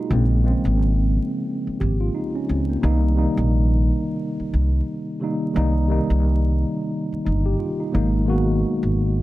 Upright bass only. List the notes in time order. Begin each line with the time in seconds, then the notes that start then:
0.11 A#1
0.65 G#1
1.67 muted upright bass stroke
1.81 G#1
2.49 C#2
2.83 C2
3.38 A#1
4.40 muted upright bass stroke
4.54 C2
5.56 C2
6.10 C2
7.13 muted upright bass stroke
7.26 G1
7.95 G#1
8.83 G#1